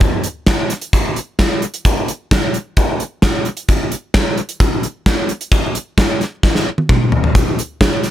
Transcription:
0.00 kick, closed hi-hat
0.24 closed hi-hat
0.47 kick, snare, closed hi-hat
0.70 snare, closed hi-hat
0.82 closed hi-hat
0.93 kick, closed hi-hat
1.16 closed hi-hat
1.39 kick, snare, closed hi-hat
1.62 closed hi-hat
1.74 closed hi-hat
1.85 kick, closed hi-hat
2.08 closed hi-hat
2.31 kick, snare, closed hi-hat
2.54 closed hi-hat
2.77 kick, closed hi-hat
3.00 closed hi-hat
3.22 kick, snare, closed hi-hat
3.45 closed hi-hat
3.57 closed hi-hat
3.68 kick, closed hi-hat
3.92 closed hi-hat
4.14 kick, snare, closed hi-hat
4.37 closed hi-hat
4.49 closed hi-hat
4.60 kick, closed hi-hat
4.83 closed hi-hat
5.06 kick, snare, closed hi-hat
5.29 closed hi-hat
5.41 closed hi-hat
5.52 kick, closed hi-hat
5.75 closed hi-hat
5.98 kick, snare, closed hi-hat
6.21 snare, closed hi-hat
6.43 kick, snare
6.55 snare
6.78 high tom
6.89 kick, mid tom
7.12 floor tom
7.24 floor tom
7.35 kick, closed hi-hat
7.59 closed hi-hat
7.81 kick, snare, closed hi-hat
8.04 snare, closed hi-hat

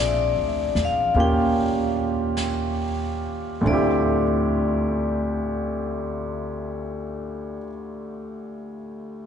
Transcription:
Already playing: A#1 C4 D4 F4 G#4 D5
0.37 D2
0.75 E2, snare
0.85 F5
1.14 D#2 A#3 C#4 F4 G4, brush sweep
1.20 G5
2.37 brush sweep, snare, hi-hat pedal
3.61 D2 D3
3.65 D2 C4 E4 D5
3.70 F4 G4

